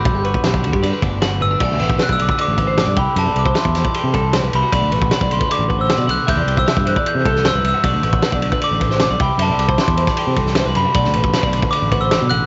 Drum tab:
CC |----------------|x---------------|----------------|----------------|
RD |x-x-x-x-x-x-x---|--x-x-x-x-x-x-x-|x-x-x-x-x-x-x-x-|x-x-x-x-x-x-x-x-|
SD |----o-------o---|-o--o-------o---|----o-o-----o---|----o-------o---|
T1 |--------------o-|----------------|----------------|----------------|
BD |o--o-o-o--o-----|o--o-o-o--o---o-|---o-o-o--o-----|o--o-o-o--o-----|

CC |----------------|----------------|----------------|----------------|
RD |x-x-x-x-x-x-x-x-|x-x-x-x-x-x-x-x-|x-x-x-x-x-x-x-x-|x-x-x-x-x-x-x-x-|
SD |----o------oo---|----o------oo---|----o--o---oo---|-o--o-------o---|
T1 |----------------|----------------|----------------|----------------|
BD |o--o-o-o--o-----|o--o-o-o--o---o-|---o-o-o--o-----|o--o-o-o--o-----|